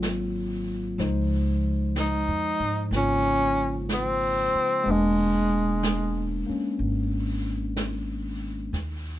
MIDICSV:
0, 0, Header, 1, 6, 480
1, 0, Start_track
1, 0, Tempo, 966184
1, 491, Time_signature, 4, 2, 24, 8
1, 4567, End_track
2, 0, Start_track
2, 0, Title_t, "Tenor saxophone"
2, 0, Program_c, 0, 66
2, 994, Note_on_c, 0, 63, 82
2, 1443, Note_off_c, 0, 63, 0
2, 1472, Note_on_c, 0, 61, 82
2, 1922, Note_off_c, 0, 61, 0
2, 1953, Note_on_c, 0, 60, 73
2, 2438, Note_on_c, 0, 56, 67
2, 2446, Note_off_c, 0, 60, 0
2, 3233, Note_off_c, 0, 56, 0
2, 4567, End_track
3, 0, Start_track
3, 0, Title_t, "Tine electric piano"
3, 0, Program_c, 1, 4
3, 0, Control_c, 1, 64, 127
3, 0, Note_on_c, 1, 54, 48
3, 0, Note_on_c, 1, 58, 45
3, 0, Note_on_c, 1, 60, 47
3, 0, Note_on_c, 1, 65, 51
3, 481, Note_off_c, 1, 54, 0
3, 491, Note_off_c, 1, 58, 0
3, 491, Note_on_c, 1, 53, 45
3, 495, Note_on_c, 1, 56, 42
3, 495, Note_on_c, 1, 72, 41
3, 496, Control_c, 1, 64, 0
3, 499, Note_on_c, 1, 63, 45
3, 500, Note_off_c, 1, 60, 0
3, 508, Note_off_c, 1, 65, 0
3, 589, Control_c, 1, 64, 127
3, 1451, Note_on_c, 1, 58, 36
3, 1459, Note_on_c, 1, 49, 34
3, 1467, Note_on_c, 1, 65, 40
3, 2396, Note_off_c, 1, 56, 0
3, 2402, Note_on_c, 1, 56, 50
3, 2406, Note_off_c, 1, 58, 0
3, 2412, Note_off_c, 1, 53, 0
3, 2412, Note_on_c, 1, 58, 41
3, 2415, Note_off_c, 1, 72, 0
3, 2416, Note_off_c, 1, 49, 0
3, 2416, Note_off_c, 1, 63, 0
3, 2419, Control_c, 1, 64, 0
3, 2419, Note_on_c, 1, 59, 47
3, 2420, Note_off_c, 1, 65, 0
3, 2428, Note_on_c, 1, 62, 55
3, 2506, Control_c, 1, 64, 127
3, 3206, Note_off_c, 1, 58, 0
3, 3212, Note_on_c, 1, 58, 37
3, 3226, Note_on_c, 1, 61, 42
3, 4328, Note_off_c, 1, 56, 0
3, 4333, Note_off_c, 1, 58, 0
3, 4337, Note_off_c, 1, 59, 0
3, 4340, Note_off_c, 1, 61, 0
3, 4341, Note_off_c, 1, 62, 0
3, 4341, Control_c, 1, 64, 0
3, 4430, Control_c, 1, 64, 127
3, 4567, End_track
4, 0, Start_track
4, 0, Title_t, "Upright bass"
4, 0, Program_c, 2, 32
4, 0, Note_on_c, 2, 32, 76
4, 470, Note_off_c, 2, 32, 0
4, 488, Note_on_c, 2, 37, 70
4, 1110, Note_off_c, 2, 37, 0
4, 1131, Note_on_c, 2, 41, 45
4, 1281, Note_off_c, 2, 41, 0
4, 1290, Note_on_c, 2, 44, 56
4, 1440, Note_off_c, 2, 44, 0
4, 1445, Note_on_c, 2, 32, 75
4, 2237, Note_off_c, 2, 32, 0
4, 2414, Note_on_c, 2, 28, 66
4, 3201, Note_off_c, 2, 28, 0
4, 3374, Note_on_c, 2, 32, 68
4, 4314, Note_off_c, 2, 32, 0
4, 4337, Note_on_c, 2, 39, 67
4, 4567, Note_off_c, 2, 39, 0
4, 4567, End_track
5, 0, Start_track
5, 0, Title_t, "Muted upright bass strokes"
5, 2259, Note_on_c, 9, 29, 33
5, 2308, Note_off_c, 9, 29, 0
5, 3224, Note_on_c, 9, 29, 32
5, 3274, Note_off_c, 9, 29, 0
5, 4567, End_track
6, 0, Start_track
6, 0, Title_t, "Drums"
6, 12, Note_on_c, 9, 25, 28
6, 12, Note_on_c, 9, 38, 38
6, 12, Note_on_c, 9, 44, 44
6, 62, Note_off_c, 9, 38, 0
6, 62, Note_off_c, 9, 44, 0
6, 491, Note_off_c, 9, 25, 0
6, 491, Note_on_c, 9, 25, 29
6, 491, Note_on_c, 9, 38, 24
6, 541, Note_off_c, 9, 38, 0
6, 973, Note_off_c, 9, 25, 0
6, 973, Note_on_c, 9, 25, 26
6, 973, Note_on_c, 9, 38, 37
6, 973, Note_on_c, 9, 44, 43
6, 1022, Note_off_c, 9, 38, 0
6, 1022, Note_off_c, 9, 44, 0
6, 1452, Note_off_c, 9, 25, 0
6, 1452, Note_on_c, 9, 25, 29
6, 1452, Note_on_c, 9, 38, 25
6, 1501, Note_off_c, 9, 38, 0
6, 1933, Note_off_c, 9, 25, 0
6, 1933, Note_on_c, 9, 25, 35
6, 1933, Note_on_c, 9, 38, 36
6, 1933, Note_on_c, 9, 44, 47
6, 1983, Note_off_c, 9, 38, 0
6, 1983, Note_off_c, 9, 44, 0
6, 2415, Note_off_c, 9, 25, 0
6, 2415, Note_on_c, 9, 25, 32
6, 2897, Note_off_c, 9, 25, 0
6, 2897, Note_on_c, 9, 25, 29
6, 2897, Note_on_c, 9, 38, 38
6, 2897, Note_on_c, 9, 44, 40
6, 2946, Note_off_c, 9, 38, 0
6, 2946, Note_off_c, 9, 44, 0
6, 3376, Note_off_c, 9, 25, 0
6, 3376, Note_on_c, 9, 25, 37
6, 3857, Note_off_c, 9, 25, 0
6, 3857, Note_on_c, 9, 25, 33
6, 3857, Note_on_c, 9, 38, 38
6, 3857, Note_on_c, 9, 44, 40
6, 3907, Note_off_c, 9, 38, 0
6, 3907, Note_off_c, 9, 44, 0
6, 4340, Note_off_c, 9, 25, 0
6, 4340, Note_on_c, 9, 25, 33
6, 4340, Note_on_c, 9, 38, 24
6, 4390, Note_off_c, 9, 38, 0
6, 4567, Note_off_c, 9, 25, 0
6, 4567, End_track
0, 0, End_of_file